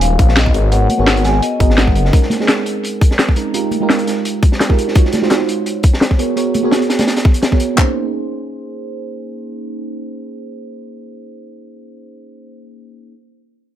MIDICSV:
0, 0, Header, 1, 5, 480
1, 0, Start_track
1, 0, Key_signature, -5, "minor"
1, 0, Tempo, 352941
1, 978, Time_signature, 4, 2, 24, 8
1, 18708, End_track
2, 0, Start_track
2, 0, Title_t, "Vibraphone"
2, 0, Program_c, 0, 11
2, 16, Note_on_c, 0, 77, 104
2, 494, Note_on_c, 0, 75, 85
2, 511, Note_off_c, 0, 77, 0
2, 976, Note_on_c, 0, 78, 103
2, 991, Note_off_c, 0, 75, 0
2, 1647, Note_off_c, 0, 78, 0
2, 1692, Note_on_c, 0, 80, 96
2, 1918, Note_off_c, 0, 80, 0
2, 1936, Note_on_c, 0, 75, 91
2, 2384, Note_off_c, 0, 75, 0
2, 2418, Note_on_c, 0, 78, 78
2, 2762, Note_off_c, 0, 78, 0
2, 18708, End_track
3, 0, Start_track
3, 0, Title_t, "FM electric piano"
3, 0, Program_c, 1, 5
3, 0, Control_c, 1, 64, 127
3, 0, Note_on_c, 1, 56, 80
3, 0, Note_on_c, 1, 63, 71
3, 0, Note_on_c, 1, 65, 73
3, 0, Note_on_c, 1, 66, 72
3, 0, Note_on_c, 1, 72, 88
3, 0, Note_on_c, 1, 73, 78
3, 730, Note_on_c, 1, 59, 75
3, 735, Note_off_c, 1, 66, 0
3, 735, Note_on_c, 1, 66, 67
3, 739, Note_on_c, 1, 68, 67
3, 743, Note_on_c, 1, 70, 65
3, 748, Note_off_c, 1, 73, 0
3, 748, Note_on_c, 1, 73, 79
3, 757, Control_c, 1, 64, 0
3, 758, Note_off_c, 1, 63, 0
3, 760, Note_off_c, 1, 65, 0
3, 764, Note_off_c, 1, 72, 0
3, 768, Note_off_c, 1, 56, 0
3, 948, Note_off_c, 1, 59, 0
3, 950, Note_off_c, 1, 66, 0
3, 952, Note_off_c, 1, 68, 0
3, 954, Note_off_c, 1, 70, 0
3, 957, Note_off_c, 1, 73, 0
3, 970, Note_on_c, 1, 59, 75
3, 974, Note_on_c, 1, 66, 69
3, 979, Note_on_c, 1, 68, 69
3, 984, Note_on_c, 1, 70, 66
3, 988, Note_on_c, 1, 73, 80
3, 1032, Control_c, 1, 64, 127
3, 1313, Note_off_c, 1, 59, 0
3, 1314, Note_off_c, 1, 66, 0
3, 1317, Note_off_c, 1, 68, 0
3, 1319, Note_off_c, 1, 70, 0
3, 1322, Note_off_c, 1, 73, 0
3, 1330, Note_on_c, 1, 59, 92
3, 1339, Note_on_c, 1, 66, 81
3, 1348, Note_on_c, 1, 68, 83
3, 1357, Note_on_c, 1, 70, 77
3, 1366, Note_on_c, 1, 73, 96
3, 2147, Note_off_c, 1, 59, 0
3, 2152, Note_off_c, 1, 66, 0
3, 2157, Note_off_c, 1, 68, 0
3, 2161, Note_off_c, 1, 70, 0
3, 2166, Note_off_c, 1, 73, 0
3, 2170, Note_on_c, 1, 59, 93
3, 2175, Note_on_c, 1, 66, 86
3, 2180, Note_on_c, 1, 68, 88
3, 2183, Note_on_c, 1, 70, 87
3, 2188, Note_on_c, 1, 75, 101
3, 2513, Note_off_c, 1, 59, 0
3, 2515, Note_off_c, 1, 66, 0
3, 2517, Note_off_c, 1, 68, 0
3, 2519, Note_off_c, 1, 70, 0
3, 2522, Note_off_c, 1, 75, 0
3, 2539, Note_on_c, 1, 59, 77
3, 2544, Note_on_c, 1, 66, 70
3, 2548, Note_on_c, 1, 68, 69
3, 2552, Note_on_c, 1, 70, 71
3, 2556, Note_on_c, 1, 75, 86
3, 2867, Note_off_c, 1, 59, 0
3, 2870, Note_off_c, 1, 66, 0
3, 2872, Note_off_c, 1, 68, 0
3, 2874, Note_off_c, 1, 70, 0
3, 2876, Note_off_c, 1, 75, 0
3, 2889, Note_on_c, 1, 56, 74
3, 2893, Note_on_c, 1, 60, 66
3, 2899, Note_on_c, 1, 61, 63
3, 2903, Note_on_c, 1, 63, 69
3, 2908, Note_on_c, 1, 70, 82
3, 2914, Control_c, 1, 64, 0
3, 3164, Control_c, 1, 64, 127
3, 3232, Note_off_c, 1, 56, 0
3, 3234, Note_off_c, 1, 60, 0
3, 3237, Note_off_c, 1, 61, 0
3, 3239, Note_off_c, 1, 63, 0
3, 3242, Note_off_c, 1, 70, 0
3, 3262, Note_on_c, 1, 56, 78
3, 3266, Note_on_c, 1, 60, 73
3, 3271, Note_on_c, 1, 61, 73
3, 3274, Note_on_c, 1, 63, 69
3, 3279, Note_on_c, 1, 68, 90
3, 3481, Note_off_c, 1, 56, 0
3, 3483, Note_off_c, 1, 60, 0
3, 3486, Note_off_c, 1, 61, 0
3, 3487, Note_off_c, 1, 63, 0
3, 3490, Note_off_c, 1, 68, 0
3, 4570, Note_on_c, 1, 56, 73
3, 4576, Note_on_c, 1, 60, 65
3, 4580, Note_on_c, 1, 61, 65
3, 4583, Note_on_c, 1, 63, 66
3, 4588, Note_on_c, 1, 70, 76
3, 4788, Note_off_c, 1, 56, 0
3, 4791, Note_off_c, 1, 60, 0
3, 4793, Note_off_c, 1, 61, 0
3, 4794, Note_off_c, 1, 63, 0
3, 4796, Note_off_c, 1, 70, 0
3, 4812, Note_on_c, 1, 56, 72
3, 4816, Note_on_c, 1, 63, 68
3, 4820, Note_on_c, 1, 65, 70
3, 4824, Note_on_c, 1, 67, 67
3, 4828, Note_on_c, 1, 70, 82
3, 4833, Control_c, 1, 64, 0
3, 5048, Control_c, 1, 64, 127
3, 5153, Note_off_c, 1, 56, 0
3, 5156, Note_off_c, 1, 63, 0
3, 5158, Note_off_c, 1, 65, 0
3, 5160, Note_off_c, 1, 67, 0
3, 5161, Note_off_c, 1, 70, 0
3, 5174, Note_on_c, 1, 56, 87
3, 5183, Note_on_c, 1, 63, 79
3, 5191, Note_on_c, 1, 65, 81
3, 5201, Note_on_c, 1, 67, 78
3, 5209, Note_on_c, 1, 70, 97
3, 6355, Note_off_c, 1, 56, 0
3, 6359, Note_off_c, 1, 63, 0
3, 6364, Note_off_c, 1, 65, 0
3, 6368, Note_off_c, 1, 67, 0
3, 6372, Note_off_c, 1, 70, 0
3, 6381, Note_on_c, 1, 56, 80
3, 6387, Note_on_c, 1, 63, 69
3, 6391, Note_on_c, 1, 65, 69
3, 6395, Note_on_c, 1, 67, 68
3, 6399, Note_on_c, 1, 70, 87
3, 6601, Note_off_c, 1, 56, 0
3, 6603, Note_off_c, 1, 63, 0
3, 6606, Note_off_c, 1, 65, 0
3, 6608, Note_off_c, 1, 67, 0
3, 6610, Note_off_c, 1, 70, 0
3, 6732, Note_on_c, 1, 56, 73
3, 6736, Note_on_c, 1, 63, 67
3, 6740, Note_on_c, 1, 65, 68
3, 6746, Note_on_c, 1, 66, 64
3, 6749, Note_on_c, 1, 73, 82
3, 6758, Control_c, 1, 64, 0
3, 6975, Control_c, 1, 64, 127
3, 7074, Note_off_c, 1, 56, 0
3, 7076, Note_off_c, 1, 63, 0
3, 7077, Note_off_c, 1, 65, 0
3, 7081, Note_off_c, 1, 66, 0
3, 7082, Note_off_c, 1, 73, 0
3, 7101, Note_on_c, 1, 56, 74
3, 7104, Note_on_c, 1, 63, 73
3, 7109, Note_on_c, 1, 65, 69
3, 7113, Note_on_c, 1, 66, 70
3, 7119, Note_on_c, 1, 72, 87
3, 7321, Note_off_c, 1, 56, 0
3, 7322, Note_off_c, 1, 63, 0
3, 7325, Note_off_c, 1, 65, 0
3, 7327, Note_off_c, 1, 66, 0
3, 7330, Note_off_c, 1, 72, 0
3, 8409, Note_on_c, 1, 59, 68
3, 8414, Note_on_c, 1, 66, 64
3, 8418, Note_on_c, 1, 68, 64
3, 8423, Note_on_c, 1, 70, 66
3, 8429, Note_on_c, 1, 73, 78
3, 8438, Control_c, 1, 64, 0
3, 8627, Note_off_c, 1, 59, 0
3, 8630, Note_off_c, 1, 66, 0
3, 8632, Note_off_c, 1, 68, 0
3, 8634, Note_off_c, 1, 70, 0
3, 8637, Note_off_c, 1, 73, 0
3, 8651, Control_c, 1, 64, 127
3, 8653, Note_on_c, 1, 59, 72
3, 8655, Note_on_c, 1, 66, 68
3, 8660, Note_on_c, 1, 68, 65
3, 8665, Note_on_c, 1, 70, 68
3, 8669, Note_on_c, 1, 73, 77
3, 8994, Note_off_c, 1, 59, 0
3, 8995, Note_off_c, 1, 66, 0
3, 8997, Note_off_c, 1, 68, 0
3, 9000, Note_off_c, 1, 70, 0
3, 9002, Note_off_c, 1, 73, 0
3, 9012, Note_on_c, 1, 59, 86
3, 9021, Note_on_c, 1, 66, 81
3, 9029, Note_on_c, 1, 68, 77
3, 9039, Note_on_c, 1, 70, 79
3, 9048, Note_on_c, 1, 73, 94
3, 10194, Note_off_c, 1, 59, 0
3, 10199, Note_off_c, 1, 66, 0
3, 10203, Note_off_c, 1, 68, 0
3, 10207, Note_off_c, 1, 70, 0
3, 10212, Note_off_c, 1, 73, 0
3, 10221, Note_on_c, 1, 59, 70
3, 10224, Note_on_c, 1, 66, 66
3, 10229, Note_on_c, 1, 68, 69
3, 10233, Note_on_c, 1, 70, 66
3, 10239, Note_on_c, 1, 73, 79
3, 10441, Note_off_c, 1, 59, 0
3, 10442, Note_off_c, 1, 66, 0
3, 10445, Note_off_c, 1, 68, 0
3, 10447, Note_off_c, 1, 70, 0
3, 10450, Note_off_c, 1, 73, 0
3, 10550, Note_on_c, 1, 58, 76
3, 10563, Note_on_c, 1, 61, 71
3, 10575, Note_on_c, 1, 63, 70
3, 10591, Note_on_c, 1, 68, 71
3, 10597, Control_c, 1, 64, 0
3, 10603, Note_on_c, 1, 72, 84
3, 10802, Control_c, 1, 64, 127
3, 15887, Note_off_c, 1, 58, 0
3, 15900, Note_off_c, 1, 61, 0
3, 15912, Note_off_c, 1, 63, 0
3, 15928, Note_off_c, 1, 68, 0
3, 15940, Note_off_c, 1, 72, 0
3, 17837, Control_c, 1, 64, 0
3, 18708, End_track
4, 0, Start_track
4, 0, Title_t, "Detuned saw bass"
4, 0, Program_c, 2, 39
4, 0, Note_on_c, 2, 27, 93
4, 242, Note_off_c, 2, 27, 0
4, 261, Note_on_c, 2, 34, 94
4, 722, Note_off_c, 2, 34, 0
4, 741, Note_on_c, 2, 32, 93
4, 1202, Note_off_c, 2, 32, 0
4, 1350, Note_on_c, 2, 32, 90
4, 1922, Note_off_c, 2, 32, 0
4, 2181, Note_on_c, 2, 32, 90
4, 2662, Note_on_c, 2, 30, 92
4, 2682, Note_off_c, 2, 32, 0
4, 2878, Note_off_c, 2, 30, 0
4, 18708, End_track
5, 0, Start_track
5, 0, Title_t, "Drums"
5, 18, Note_on_c, 9, 42, 85
5, 20, Note_off_c, 9, 42, 0
5, 20, Note_on_c, 9, 42, 90
5, 156, Note_off_c, 9, 42, 0
5, 258, Note_on_c, 9, 42, 62
5, 260, Note_on_c, 9, 36, 109
5, 388, Note_on_c, 9, 38, 52
5, 394, Note_off_c, 9, 42, 0
5, 396, Note_off_c, 9, 36, 0
5, 498, Note_on_c, 9, 42, 81
5, 499, Note_off_c, 9, 38, 0
5, 499, Note_off_c, 9, 42, 0
5, 499, Note_on_c, 9, 38, 124
5, 499, Note_on_c, 9, 42, 87
5, 501, Note_off_c, 9, 38, 0
5, 501, Note_on_c, 9, 38, 110
5, 629, Note_on_c, 9, 36, 65
5, 635, Note_off_c, 9, 42, 0
5, 637, Note_off_c, 9, 38, 0
5, 736, Note_on_c, 9, 42, 64
5, 740, Note_off_c, 9, 42, 0
5, 740, Note_on_c, 9, 42, 59
5, 765, Note_off_c, 9, 36, 0
5, 876, Note_off_c, 9, 42, 0
5, 976, Note_on_c, 9, 42, 83
5, 980, Note_off_c, 9, 42, 0
5, 980, Note_on_c, 9, 42, 88
5, 1116, Note_off_c, 9, 42, 0
5, 1217, Note_on_c, 9, 63, 59
5, 1220, Note_on_c, 9, 42, 68
5, 1353, Note_off_c, 9, 63, 0
5, 1356, Note_off_c, 9, 42, 0
5, 1449, Note_on_c, 9, 38, 121
5, 1458, Note_on_c, 9, 42, 76
5, 1461, Note_off_c, 9, 38, 0
5, 1461, Note_off_c, 9, 42, 0
5, 1461, Note_on_c, 9, 38, 111
5, 1461, Note_on_c, 9, 42, 81
5, 1590, Note_off_c, 9, 42, 0
5, 1590, Note_on_c, 9, 42, 41
5, 1597, Note_off_c, 9, 38, 0
5, 1691, Note_off_c, 9, 42, 0
5, 1691, Note_on_c, 9, 42, 71
5, 1700, Note_off_c, 9, 42, 0
5, 1700, Note_on_c, 9, 42, 62
5, 1701, Note_on_c, 9, 38, 52
5, 1836, Note_off_c, 9, 42, 0
5, 1837, Note_off_c, 9, 38, 0
5, 1937, Note_on_c, 9, 42, 82
5, 1938, Note_off_c, 9, 42, 0
5, 1938, Note_on_c, 9, 42, 81
5, 2074, Note_off_c, 9, 42, 0
5, 2177, Note_on_c, 9, 42, 68
5, 2179, Note_off_c, 9, 42, 0
5, 2179, Note_on_c, 9, 42, 57
5, 2180, Note_on_c, 9, 36, 103
5, 2312, Note_on_c, 9, 38, 51
5, 2315, Note_off_c, 9, 42, 0
5, 2316, Note_off_c, 9, 36, 0
5, 2417, Note_off_c, 9, 38, 0
5, 2417, Note_on_c, 9, 38, 119
5, 2417, Note_on_c, 9, 42, 86
5, 2419, Note_off_c, 9, 42, 0
5, 2419, Note_on_c, 9, 42, 79
5, 2421, Note_off_c, 9, 38, 0
5, 2421, Note_on_c, 9, 38, 107
5, 2549, Note_on_c, 9, 36, 62
5, 2555, Note_off_c, 9, 42, 0
5, 2557, Note_off_c, 9, 38, 0
5, 2657, Note_on_c, 9, 42, 57
5, 2659, Note_off_c, 9, 42, 0
5, 2659, Note_on_c, 9, 42, 75
5, 2685, Note_off_c, 9, 36, 0
5, 2788, Note_on_c, 9, 38, 45
5, 2795, Note_off_c, 9, 42, 0
5, 2899, Note_on_c, 9, 42, 86
5, 2900, Note_on_c, 9, 36, 113
5, 2907, Note_off_c, 9, 42, 0
5, 2907, Note_on_c, 9, 42, 84
5, 2924, Note_off_c, 9, 38, 0
5, 3024, Note_on_c, 9, 38, 34
5, 3036, Note_off_c, 9, 36, 0
5, 3043, Note_off_c, 9, 42, 0
5, 3130, Note_on_c, 9, 63, 63
5, 3139, Note_on_c, 9, 42, 60
5, 3143, Note_off_c, 9, 42, 0
5, 3143, Note_on_c, 9, 42, 64
5, 3148, Note_off_c, 9, 38, 0
5, 3148, Note_on_c, 9, 38, 42
5, 3266, Note_off_c, 9, 63, 0
5, 3271, Note_off_c, 9, 38, 0
5, 3271, Note_on_c, 9, 38, 40
5, 3279, Note_off_c, 9, 42, 0
5, 3373, Note_on_c, 9, 42, 78
5, 3378, Note_off_c, 9, 38, 0
5, 3378, Note_off_c, 9, 42, 0
5, 3378, Note_on_c, 9, 38, 103
5, 3378, Note_on_c, 9, 42, 84
5, 3381, Note_off_c, 9, 38, 0
5, 3381, Note_on_c, 9, 38, 108
5, 3514, Note_off_c, 9, 42, 0
5, 3517, Note_off_c, 9, 38, 0
5, 3617, Note_on_c, 9, 42, 63
5, 3620, Note_off_c, 9, 42, 0
5, 3620, Note_on_c, 9, 42, 66
5, 3756, Note_off_c, 9, 42, 0
5, 3856, Note_on_c, 9, 42, 86
5, 3869, Note_off_c, 9, 42, 0
5, 3869, Note_on_c, 9, 42, 86
5, 4005, Note_off_c, 9, 42, 0
5, 4098, Note_on_c, 9, 42, 58
5, 4100, Note_on_c, 9, 36, 100
5, 4108, Note_off_c, 9, 42, 0
5, 4108, Note_on_c, 9, 42, 63
5, 4229, Note_on_c, 9, 38, 54
5, 4236, Note_off_c, 9, 36, 0
5, 4244, Note_off_c, 9, 42, 0
5, 4334, Note_off_c, 9, 38, 0
5, 4334, Note_on_c, 9, 38, 117
5, 4338, Note_off_c, 9, 38, 0
5, 4338, Note_on_c, 9, 38, 115
5, 4338, Note_on_c, 9, 42, 75
5, 4469, Note_on_c, 9, 36, 59
5, 4474, Note_off_c, 9, 38, 0
5, 4474, Note_off_c, 9, 42, 0
5, 4569, Note_on_c, 9, 42, 64
5, 4579, Note_off_c, 9, 42, 0
5, 4579, Note_on_c, 9, 42, 60
5, 4605, Note_off_c, 9, 36, 0
5, 4715, Note_off_c, 9, 42, 0
5, 4815, Note_on_c, 9, 42, 89
5, 4817, Note_off_c, 9, 42, 0
5, 4817, Note_on_c, 9, 42, 86
5, 4953, Note_off_c, 9, 42, 0
5, 5050, Note_on_c, 9, 63, 52
5, 5055, Note_on_c, 9, 42, 60
5, 5059, Note_off_c, 9, 42, 0
5, 5059, Note_on_c, 9, 42, 64
5, 5186, Note_off_c, 9, 63, 0
5, 5195, Note_off_c, 9, 42, 0
5, 5297, Note_on_c, 9, 38, 101
5, 5300, Note_off_c, 9, 38, 0
5, 5300, Note_on_c, 9, 38, 105
5, 5300, Note_on_c, 9, 42, 82
5, 5307, Note_off_c, 9, 42, 0
5, 5307, Note_on_c, 9, 42, 76
5, 5421, Note_off_c, 9, 42, 0
5, 5421, Note_on_c, 9, 42, 44
5, 5436, Note_off_c, 9, 38, 0
5, 5539, Note_off_c, 9, 42, 0
5, 5539, Note_on_c, 9, 42, 64
5, 5540, Note_off_c, 9, 42, 0
5, 5540, Note_on_c, 9, 42, 64
5, 5541, Note_on_c, 9, 38, 52
5, 5676, Note_off_c, 9, 42, 0
5, 5677, Note_off_c, 9, 38, 0
5, 5780, Note_on_c, 9, 42, 85
5, 5782, Note_off_c, 9, 42, 0
5, 5782, Note_on_c, 9, 42, 92
5, 5918, Note_off_c, 9, 42, 0
5, 6019, Note_on_c, 9, 42, 67
5, 6020, Note_on_c, 9, 36, 97
5, 6149, Note_on_c, 9, 38, 52
5, 6155, Note_off_c, 9, 42, 0
5, 6156, Note_off_c, 9, 36, 0
5, 6262, Note_off_c, 9, 38, 0
5, 6262, Note_on_c, 9, 38, 107
5, 6264, Note_on_c, 9, 42, 89
5, 6390, Note_on_c, 9, 36, 57
5, 6398, Note_off_c, 9, 38, 0
5, 6400, Note_off_c, 9, 42, 0
5, 6501, Note_on_c, 9, 42, 60
5, 6507, Note_off_c, 9, 42, 0
5, 6507, Note_on_c, 9, 42, 61
5, 6526, Note_off_c, 9, 36, 0
5, 6634, Note_on_c, 9, 38, 41
5, 6643, Note_off_c, 9, 42, 0
5, 6735, Note_on_c, 9, 42, 91
5, 6741, Note_on_c, 9, 36, 110
5, 6770, Note_off_c, 9, 38, 0
5, 6866, Note_on_c, 9, 38, 30
5, 6871, Note_off_c, 9, 42, 0
5, 6877, Note_off_c, 9, 36, 0
5, 6968, Note_on_c, 9, 42, 64
5, 6979, Note_off_c, 9, 38, 0
5, 6979, Note_off_c, 9, 42, 0
5, 6979, Note_on_c, 9, 38, 39
5, 6979, Note_on_c, 9, 42, 63
5, 6986, Note_on_c, 9, 63, 58
5, 7105, Note_off_c, 9, 38, 0
5, 7105, Note_on_c, 9, 38, 40
5, 7115, Note_off_c, 9, 42, 0
5, 7122, Note_off_c, 9, 63, 0
5, 7209, Note_on_c, 9, 42, 83
5, 7216, Note_off_c, 9, 38, 0
5, 7216, Note_on_c, 9, 38, 110
5, 7220, Note_off_c, 9, 38, 0
5, 7220, Note_on_c, 9, 38, 98
5, 7345, Note_off_c, 9, 42, 0
5, 7356, Note_off_c, 9, 38, 0
5, 7459, Note_on_c, 9, 42, 67
5, 7461, Note_off_c, 9, 42, 0
5, 7461, Note_on_c, 9, 42, 70
5, 7597, Note_off_c, 9, 42, 0
5, 7698, Note_on_c, 9, 42, 85
5, 7700, Note_off_c, 9, 42, 0
5, 7700, Note_on_c, 9, 42, 82
5, 7836, Note_off_c, 9, 42, 0
5, 7931, Note_on_c, 9, 42, 69
5, 7940, Note_on_c, 9, 36, 92
5, 8067, Note_off_c, 9, 42, 0
5, 8072, Note_on_c, 9, 38, 54
5, 8076, Note_off_c, 9, 36, 0
5, 8177, Note_off_c, 9, 38, 0
5, 8177, Note_on_c, 9, 38, 112
5, 8184, Note_off_c, 9, 38, 0
5, 8184, Note_on_c, 9, 38, 111
5, 8188, Note_on_c, 9, 42, 77
5, 8309, Note_on_c, 9, 36, 57
5, 8320, Note_off_c, 9, 38, 0
5, 8324, Note_off_c, 9, 42, 0
5, 8418, Note_on_c, 9, 42, 59
5, 8445, Note_off_c, 9, 36, 0
5, 8554, Note_off_c, 9, 42, 0
5, 8660, Note_on_c, 9, 42, 91
5, 8661, Note_off_c, 9, 42, 0
5, 8661, Note_on_c, 9, 42, 80
5, 8797, Note_off_c, 9, 42, 0
5, 8898, Note_on_c, 9, 42, 66
5, 8899, Note_off_c, 9, 42, 0
5, 8899, Note_on_c, 9, 42, 63
5, 8908, Note_on_c, 9, 63, 62
5, 9035, Note_off_c, 9, 42, 0
5, 9044, Note_off_c, 9, 63, 0
5, 9133, Note_on_c, 9, 38, 98
5, 9139, Note_off_c, 9, 38, 0
5, 9139, Note_on_c, 9, 38, 101
5, 9144, Note_on_c, 9, 42, 87
5, 9274, Note_off_c, 9, 42, 0
5, 9274, Note_on_c, 9, 42, 40
5, 9275, Note_off_c, 9, 38, 0
5, 9379, Note_on_c, 9, 38, 98
5, 9384, Note_off_c, 9, 42, 0
5, 9384, Note_on_c, 9, 42, 79
5, 9502, Note_off_c, 9, 42, 0
5, 9502, Note_on_c, 9, 42, 79
5, 9511, Note_off_c, 9, 38, 0
5, 9511, Note_on_c, 9, 38, 94
5, 9511, Note_on_c, 9, 63, 62
5, 9621, Note_off_c, 9, 38, 0
5, 9621, Note_on_c, 9, 38, 106
5, 9623, Note_off_c, 9, 42, 0
5, 9623, Note_on_c, 9, 42, 75
5, 9647, Note_off_c, 9, 63, 0
5, 9744, Note_off_c, 9, 42, 0
5, 9744, Note_on_c, 9, 42, 73
5, 9748, Note_off_c, 9, 38, 0
5, 9748, Note_on_c, 9, 38, 97
5, 9861, Note_on_c, 9, 36, 99
5, 9880, Note_off_c, 9, 42, 0
5, 9884, Note_off_c, 9, 38, 0
5, 9983, Note_on_c, 9, 42, 59
5, 9997, Note_off_c, 9, 36, 0
5, 10097, Note_off_c, 9, 42, 0
5, 10097, Note_on_c, 9, 42, 75
5, 10101, Note_on_c, 9, 38, 108
5, 10107, Note_off_c, 9, 38, 0
5, 10107, Note_on_c, 9, 38, 96
5, 10229, Note_on_c, 9, 36, 55
5, 10233, Note_off_c, 9, 42, 0
5, 10243, Note_off_c, 9, 38, 0
5, 10333, Note_on_c, 9, 42, 60
5, 10341, Note_off_c, 9, 42, 0
5, 10341, Note_on_c, 9, 42, 62
5, 10365, Note_off_c, 9, 36, 0
5, 10477, Note_off_c, 9, 42, 0
5, 10580, Note_on_c, 9, 36, 98
5, 10580, Note_on_c, 9, 39, 82
5, 10716, Note_off_c, 9, 36, 0
5, 10716, Note_off_c, 9, 39, 0
5, 18708, End_track
0, 0, End_of_file